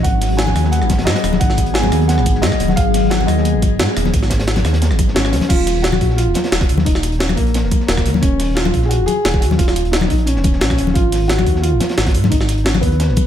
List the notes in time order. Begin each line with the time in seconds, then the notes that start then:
0.03 G#1 F#3 B3 G#4 F#5, kick, closed hi-hat
0.21 snare, closed hi-hat, open hi-hat
0.30 G#1
0.37 G#5, snare, closed hi-hat
0.47 snare, high conga
0.56 D#2, cross-stick, closed hi-hat, open hi-hat
0.64 snare
0.71 F#5, closed hi-hat
0.82 G#1, cross-stick
0.89 kick, snare, closed hi-hat, high conga
0.98 snare, closed hi-hat
1.05 G#2 D#5, snare, closed hi-hat
1.15 snare, closed hi-hat
1.24 D#1, cross-stick, closed hi-hat, open hi-hat
1.32 snare, high conga
1.39 G#1 F#5, kick, closed hi-hat
1.50 snare
1.57 kick, closed hi-hat
1.66 G#1, closed hi-hat
1.74 G#5, snare, closed hi-hat
1.83 snare, high conga
1.92 D#2, cross-stick, closed hi-hat, open hi-hat
2.01 closed hi-hat
2.08 F#5, snare, closed hi-hat
2.18 G#1, cross-stick, snare
2.26 kick, closed hi-hat, high conga
2.35 snare
2.42 G#2 D#5, snare, closed hi-hat
2.52 kick, cross-stick, snare
2.60 D#1, snare, closed hi-hat, open hi-hat
2.68 F#5, snare, high conga
2.76 G#1 F5, kick, closed hi-hat
2.94 snare, closed hi-hat, open hi-hat
3.03 G#1
3.10 F#5, snare, closed hi-hat
3.20 snare, high conga
3.27 D#2 D#5, cross-stick, closed hi-hat, open hi-hat
3.37 snare
3.45 closed hi-hat
3.54 G#1
3.62 kick, closed hi-hat, high conga
3.79 G#2, snare, closed hi-hat
3.96 D#1, cross-stick, closed hi-hat, open hi-hat
4.05 snare, high conga
4.14 G#1, kick, closed hi-hat
4.23 snare
4.30 kick, snare, closed hi-hat
4.39 G#1, snare, closed hi-hat
4.47 snare, closed hi-hat
4.56 snare, closed hi-hat, high conga
4.65 D#2, cross-stick, snare, closed hi-hat, open hi-hat
4.73 snare, closed hi-hat
4.82 snare, closed hi-hat
4.91 G#1, cross-stick, snare
4.99 kick, closed hi-hat, high conga
5.08 snare
5.14 G#1 C#4, snare, closed hi-hat
5.25 cross-stick, snare
5.32 D#2, snare, closed hi-hat, open hi-hat
5.41 snare, closed hi-hat, high conga
5.48 D#1 F4, kick, closed hi-hat, crash
5.66 snare, closed hi-hat, open hi-hat
5.76 D#1
5.82 F#4, snare, closed hi-hat
5.92 cross-stick, snare, high conga
6.01 A#1, kick, closed hi-hat, open hi-hat
6.10 snare
6.16 F4, closed hi-hat
6.27 D#1
6.34 snare, closed hi-hat, high conga
6.44 snare, closed hi-hat
6.51 D#1, snare, closed hi-hat
6.61 kick, snare, closed hi-hat
6.69 D#2, closed hi-hat, open hi-hat
6.78 snare, high conga
6.85 D#1 D#4, kick, closed hi-hat
6.95 cross-stick, snare
7.03 closed hi-hat
7.12 D#1, closed hi-hat
7.19 C#4, snare, closed hi-hat
7.29 cross-stick, snare, high conga
7.36 A#1 A#3, kick, closed hi-hat, open hi-hat
7.47 closed hi-hat
7.54 snare, closed hi-hat
7.63 D#1, snare
7.71 kick, closed hi-hat, high conga
7.80 snare
7.87 D#1 A#3, snare, closed hi-hat
7.97 kick, cross-stick, snare
8.05 D#2, snare, closed hi-hat, open hi-hat
8.14 snare, high conga
8.21 D#1 C#4, kick, closed hi-hat
8.40 snare, closed hi-hat, open hi-hat
8.49 D#1
8.55 F4, snare, closed hi-hat
8.65 cross-stick, snare, high conga
8.74 A#1, kick, closed hi-hat, open hi-hat
8.82 G#4, snare
8.89 F#4, closed hi-hat
9.00 D#1
9.06 G#4, closed hi-hat, high conga
9.25 D#1, snare, closed hi-hat
9.34 kick
9.40 D#2 F#4, closed hi-hat, open hi-hat
9.51 snare, high conga
9.57 D#1 F4, kick, closed hi-hat
9.68 cross-stick, snare
9.76 closed hi-hat
9.85 D#1, closed hi-hat
9.91 D#4, snare, closed hi-hat
10.01 cross-stick, snare, high conga
10.08 A#1 D#4, kick, closed hi-hat, open hi-hat
10.18 closed hi-hat
10.26 C#4, closed hi-hat
10.36 D#1, snare
10.44 kick, closed hi-hat, high conga
10.53 snare
10.60 A#1 C#4, snare, closed hi-hat
10.70 kick, cross-stick, snare
10.78 D#1, snare, closed hi-hat, open hi-hat
10.87 snare, high conga
10.94 G#1 F4, kick, closed hi-hat
11.12 snare, closed hi-hat, open hi-hat
11.21 G#1
11.28 F#4, snare, closed hi-hat
11.38 cross-stick, snare, high conga
11.46 D#2, kick, closed hi-hat, open hi-hat
11.56 snare
11.62 F4, closed hi-hat
11.72 G#1
11.80 snare, closed hi-hat, high conga
11.89 snare, closed hi-hat
11.97 G#1, snare, closed hi-hat
12.06 kick, snare, closed hi-hat
12.14 G#2, closed hi-hat, open hi-hat
12.23 snare, high conga
12.30 G#1 D#4, kick, closed hi-hat
12.41 cross-stick, snare
12.49 closed hi-hat
12.57 G#1, closed hi-hat
12.64 C#4, snare, closed hi-hat
12.74 cross-stick, snare, high conga
12.81 D#2 B3, kick, closed hi-hat, open hi-hat
12.92 closed hi-hat
13.00 snare, closed hi-hat
13.08 G#1, snare
13.16 kick, closed hi-hat, high conga